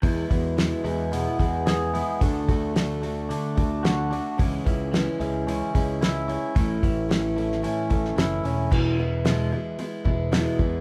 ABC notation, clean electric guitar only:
X:1
M:4/4
L:1/8
Q:1/4=111
K:Emix
V:1 name="Clean electric guitar" clef=bass
E,, B,, E, G, B, G, G B, | D, A, D, A, D A, F D | C, E, E, G, C G, E C | A,, E, E, A, C A, E C |
[E,,B,,E,] [E,,B,,] [E,,B,,] [E,,B,,] [E,,B,,] [E,,B,,] [E,,B,,E,] [E,,B,,] |]